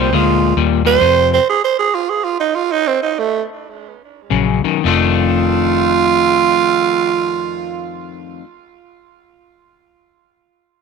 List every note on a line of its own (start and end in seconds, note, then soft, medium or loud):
0.00 0.11 C2 medium
0.00 0.11 A#2 medium
0.00 0.11 G3 medium
0.00 0.16 C4 medium
0.13 0.55 D2 medium
0.13 0.53 A#2 medium
0.13 0.54 G#3 medium
0.13 0.56 F4 loud
0.57 0.99 D#2 medium
0.57 0.82 A#2 medium
0.57 0.82 G3 medium
0.85 0.99 A#2 medium
0.85 0.99 G3 medium
0.85 1.28 C5 loud
1.00 1.38 F2 medium
1.00 1.37 F2 medium
1.00 1.38 C3 medium
1.34 1.46 C5 loud
1.49 1.61 G#4 loud
1.64 1.76 C5 medium
1.79 1.96 G#4 medium
1.94 2.11 F4 loud
2.10 2.25 G#4 medium
2.24 2.37 F4 medium
2.40 2.57 D#4 medium
2.55 2.73 F4 loud
2.72 2.89 D#4 loud
2.87 3.00 C4 loud
3.03 3.20 D#4 medium
3.19 3.42 A3 loud
4.30 4.62 A#1 medium
4.30 4.61 F#2 medium
4.30 4.61 C#3 medium
4.64 4.82 F#2 medium
4.64 4.83 D#3 medium
4.83 8.39 F1 medium
4.83 8.42 F2 medium
4.83 8.44 D#3 medium
4.83 8.45 A3 loud
4.83 8.46 D4 loud
4.88 8.43 F4 loud